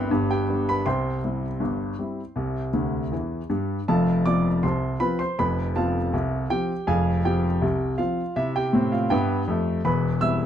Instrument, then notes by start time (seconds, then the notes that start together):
grand piano
Already playing: G1 G2 G3 C4 E4 B4 C5 G5 B5 C6
0.11 G1 G2
0.30 G4 G5
0.49 G3 B3 D4
0.69 B4 B5
0.86 C2 C3 C5 G5 C6
1.24 G3 C4 E4
1.60 G1 G2
1.99 G3 C4 E4
2.36 C2 C3
2.73 D2 D3
3.12 E2 E3
3.50 G2 G3
3.88 F1 F2 A4 F5 A5
4.26 F3 C4 F4 D5 D6
4.63 C2 C3 C5 A5 C6
5.00 F3 C4 F4 B4 B5
5.19 C5 C6
5.39 F1 F2 B4 B5
5.76 F3 C4 F4 A4 F5 A5
6.13 C2 C3
6.50 F3 C4 F4 G4 G5
6.87 F1 F2 G#4 F5 G#5
7.25 F3 C4 F4 G4 G5
7.61 C2 C3
7.98 F3 C4 F4 F5
8.36 C3 E4 E5
8.56 G4 G5
8.73 A2 C4
8.92 F4 F5
9.10 G2 B3 G4 E5 G5
9.48 F2 A3
9.85 E1 E2 B4 B5
10.21 G3 C4 E4 E5 E6